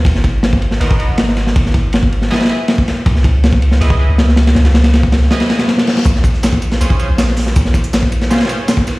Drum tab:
RD |x---x---x---x---x---x---x---x---|x---x---x---x---xxxxx---x---x---|x---x---x---x---x-------x---x-x-|x-x-x-x-x---x---x-x-x-x-x-x-x-x-|
HH |--------------------------------|--------------------------------|--------------------------------|--------------------------------|
TB |--------------------------------|--------------------------------|--------------------------------|--------------------------------|
SD |--o-----o-----o---------o-o-o-o-|--o-----o-----o-oooo----o---o---|--o-----o-----o---------o-o-o-o-|o-o-o-o-o---o-o-o-o-o-o-o-o-o-o-|
BD |o---o-----o-------o-------------|o---o-----o---------------o-----|o---o-----o-------o-------------|----------o---------------------|

RD |x---x---x---x---x---x---x---x---|x---x---x---x---xxxxx---x---x---|
HH |----------------------------o---|------x-------------------------|
TB |x---x---x---x---x---x---x-------|x---x---x---x---x---x---x---x---|
SD |--o---o-o-----o---------o-o-o-o-|--o-----o-----o-oooo----o---o---|
BD |o---o-----o-------o-------------|o---o-----o---------------o-----|